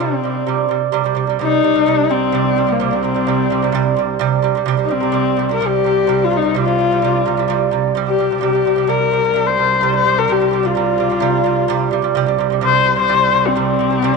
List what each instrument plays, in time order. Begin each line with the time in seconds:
0.00 lute C3 G3, horsehead fiddle C4
0.24 lute C3 G3
0.47 lute C3 G3
0.69 lute C3 G3
0.92 cello C2, lute C3 G3
1.04 lute C3 G3
1.15 lute C3 G3
1.27 lute C3 G3
1.39 lute C3 G3, horsehead fiddle D#4
1.63 lute C3 G3
1.74 lute C3 G3
1.86 lute C3 G3
2.09 lute C3 G3, horsehead fiddle C4
2.32 lute C3 G3
2.56 lute C3 G3
2.67 lute C3 G3
2.72 horsehead fiddle A#3
2.80 lute C3 G3
2.91 lute C3 G3, horsehead fiddle C4
3.03 lute C3 G3
3.15 lute C3 G3
3.27 lute C3 G3
3.50 lute C3 G3
3.62 lute C3 G3
3.72 lute C3 G3
3.97 lute C3 G3
4.19 lute C3 G3
4.42 lute C3 G3
4.55 lute C3 G3
4.66 cello C2, lute C3 G3
4.77 lute C3 G3
4.84 horsehead fiddle D#4
4.89 lute C3 G3, horsehead fiddle C4
5.01 lute C3 G3
5.12 lute C3 G3
5.37 lute C3 G3
5.49 lute C3 G3
5.54 horsehead fiddle A#4
5.60 lute C3 G3
5.67 horsehead fiddle G4
5.84 lute C3 G3
6.07 lute C3 G3
6.24 horsehead fiddle F4
6.31 lute C3 G3
6.37 horsehead fiddle D#4
6.42 lute C3 G3
6.55 lute C3 G3
6.60 horsehead fiddle F4
6.65 lute C3 G3
6.79 lute C3 G3
6.91 lute C3 G3
7.02 lute C3 G3
7.26 lute C3 G3
7.37 lute C3 G3
7.48 lute C3 G3
7.71 lute C3 G3
7.95 lute C3 G3
8.08 horsehead fiddle G4
8.19 lute C3 G3
8.31 lute C3 G3
8.41 cello C2, lute C3 G3, horsehead fiddle G4
8.53 lute C3 G3
8.65 lute C3 G3
8.76 lute C3 G3
8.87 lute C3 G3, horsehead fiddle A#4
9.11 lute C3 G3
9.23 lute C3 G3
9.34 lute C3 G3
9.47 horsehead fiddle C5
9.58 lute C3 G3
9.81 lute C3 G3
9.96 horsehead fiddle C5
10.05 lute C3 G3
10.16 lute C3 G3, horsehead fiddle A#4
10.28 lute C3 G3
10.32 horsehead fiddle G4
10.40 lute C3 G3
10.51 lute C3 G3
10.63 lute C3 G3, horsehead fiddle F4
10.75 lute C3 G3
10.98 lute C3 G3
11.10 lute C3 G3
11.20 lute C3 G3
11.44 lute C3 G3
11.68 lute C3 G3
11.91 lute C3 G3
12.02 lute C3 G3
12.14 cello C2, lute C3 G3
12.26 lute C3 G3
12.38 lute C3 G3
12.50 lute C3 G3
12.61 lute C3 G3
12.65 horsehead fiddle C5
12.84 lute C3 G3
12.96 lute C3 G3, horsehead fiddle C5
13.08 lute C3 G3
13.32 lute C3 G3
13.47 horsehead fiddle C4
13.56 lute C3 G3
13.79 lute C3 G3
13.90 lute C3 G3
14.02 lute C3 G3